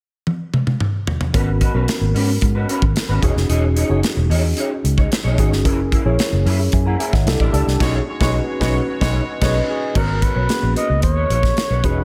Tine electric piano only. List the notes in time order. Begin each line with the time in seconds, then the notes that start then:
1.33 B3 C#4 F#4 A#4
1.74 B3 C#4 F#4 A#4
3.22 C#4 D#4 F#4 G#4
3.89 C#4 D#4 F#4 G#4
5.38 C#4 D#4 F#4 G#4
5.65 C#4 E4 G#4 A#4
6.05 C#4 E4 G#4 C#5
6.73 E5 G#5
6.87 F#5 A#5
7.00 E5 G#5
7.13 D#5 F#5
7.26 D4 E4 G4 A4
7.53 D4 E4 G4 A4
7.80 C#4 D#4 F#4 G#4
8.20 C#4 D#4 F#4 B4
8.60 C#4 D#4 F#4 B4
9.01 B4 D#5
9.42 B4 D#5
9.95 B3 C#4 F#4 A#4
10.49 A#3 C#4 F#4 G#4
10.55 B3
11.83 C#4 D#4 F#4 G#4